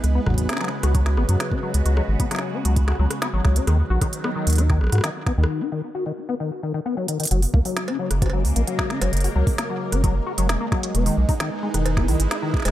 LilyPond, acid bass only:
\new Staff \with { instrumentName = "Acid bass" } { \clef bass \time 4/4 \key fis \mixolydian \tempo 4 = 132 r16 b16 fis8 cis'16 fis16 r16 fis'16 fis16 r16 b16 fis8 cis'16 fis16 r16 | fis'16 fis16 r16 b16 fis8 cis'16 fis16 r16 fis'16 fis16 r16 b16 fis8 cis'16 | dis16 r16 fis'16 dis16 r16 b16 dis8 dis'16 dis16 r16 fis'16 dis16 r16 b16 dis16~ | dis16 dis'16 dis16 r16 fis'16 dis16 r16 b16 dis16 r16 dis16 dis16 b16 fis16 dis16 dis16 |
fis16 r16 ais16 fis8 cis'16 fis16 r16 fis'16 fis16 r16 ais16 fis8 cis'16 fis16 | r16 fis'16 fis16 r16 ais16 fis8 cis'16 fis16 r16 fis'16 fis16 r16 ais16 fis8 | b16 dis16 r16 dis'16 dis16 r16 gis16 dis8 b16 dis16 r16 dis'16 dis16 r16 gis16 | }